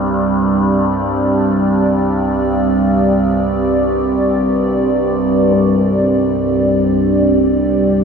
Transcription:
0.00 5.55 C2 medium
0.00 5.54 G2 medium
0.00 8.04 C4 medium
0.00 8.04 G4 medium
0.00 5.57 C5 medium
0.00 8.04 D5 medium
5.55 8.04 C2 medium
5.55 8.04 G2 medium

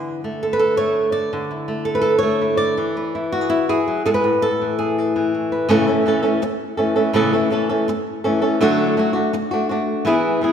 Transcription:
0.00 1.30 D3 medium
0.00 0.24 E3 medium
0.24 0.77 A3 medium
0.43 0.58 A4 medium
0.53 0.77 B4 medium
0.59 1.14 A4 medium
0.77 1.30 A3 medium
0.77 1.12 C#5 medium
1.12 1.68 D5 medium
1.33 2.76 D3 medium
1.51 2.41 E4 soft
1.68 2.22 A3 medium
1.85 2.00 A4 medium
1.95 2.18 B4 medium
2.02 2.58 A4 medium
2.19 2.57 C#5 loud
2.23 2.76 A3 medium
2.41 3.15 E4 soft
2.57 2.77 D5 medium
2.77 3.87 E3 medium
2.97 3.41 B4 soft
3.15 3.49 E4 medium
3.32 3.78 F#4 medium
3.41 3.68 G#4 medium
3.50 3.68 E4 medium
3.69 5.34 E4 medium
3.69 4.04 G#4 medium
3.87 4.06 F#3 medium
4.06 4.24 G#3 medium
4.06 4.10 G#4 medium
4.06 4.08 A4 loud
4.14 4.78 B4 medium
4.24 5.67 A2 medium
4.42 4.97 A4 medium
4.62 5.15 E3 medium
4.79 5.33 G#4 medium
4.98 5.52 A4 medium
5.16 5.68 E3 medium
5.34 5.68 A3 soft
5.52 5.68 B4 soft
5.69 5.87 A2 medium
5.69 5.87 C#3 medium
5.69 5.87 E3 medium
5.69 5.87 A3 medium
5.69 5.87 C#4 loud
5.69 5.86 A4 loud
5.87 6.04 E3 soft
5.87 6.05 A3 medium
5.87 6.06 C#4 medium
5.87 6.05 A4 medium
6.06 6.23 E3 medium
6.06 6.24 A3 medium
6.06 6.22 C#4 medium
6.06 6.21 A4 medium
6.23 6.41 E3 soft
6.23 6.42 A3 soft
6.23 6.41 C#4 medium
6.23 6.41 A4 medium
6.42 muted nylon-string guitar stroke medium
6.77 6.96 E3 soft
6.77 6.96 A3 soft
6.77 6.95 C#4 medium
6.77 6.95 A4 medium
6.96 7.13 E3 soft
6.96 7.14 A3 medium
6.96 7.14 C#4 medium
6.96 7.14 A4 medium
7.13 7.32 A2 medium
7.13 7.32 C#3 medium
7.13 7.32 E3 medium
7.13 7.32 A3 medium
7.13 7.33 C#4 medium
7.13 7.32 A4 loud
7.33 7.49 E3 soft
7.33 7.50 A3 soft
7.33 7.51 C#4 soft
7.33 7.50 A4 medium
7.50 7.68 E3 medium
7.50 7.69 A3 medium
7.50 7.69 C#4 medium
7.50 7.68 A4 medium
7.69 7.88 E3 soft
7.69 7.88 A3 soft
7.69 7.87 C#4 soft
7.69 7.87 A4 medium
7.88 muted nylon-string guitar stroke medium
8.24 8.43 E3 medium
8.24 8.42 A3 medium
8.24 8.41 C#4 medium
8.24 8.41 A4 medium
8.42 8.60 E3 soft
8.42 8.60 A3 soft
8.42 8.59 C#4 medium
8.42 8.59 A4 medium
8.61 8.96 D3 medium
8.61 8.96 F#3 medium
8.61 8.96 A3 loud
8.61 8.97 D4 medium
8.61 8.97 F#4 loud
8.97 9.14 F#3 medium
8.97 9.14 A3 medium
8.97 9.13 D4 medium
8.97 9.12 F#4 medium
9.13 9.32 A3 soft
9.13 9.32 D4 soft
9.13 9.31 F#4 medium
9.33 muted nylon-string guitar stroke medium
9.51 9.69 A3 soft
9.51 9.69 D4 medium
9.51 9.68 F#4 medium
9.69 10.05 A3 medium
9.69 10.06 D4 medium
9.69 10.05 F#4 medium
10.05 10.40 E3 medium
10.05 10.41 B3 medium
10.05 10.41 E4 loud
10.05 10.42 G#4 medium
10.41 10.52 E3 medium
10.41 10.52 B3 medium
10.41 10.52 E4 medium
10.41 10.52 G#4 medium

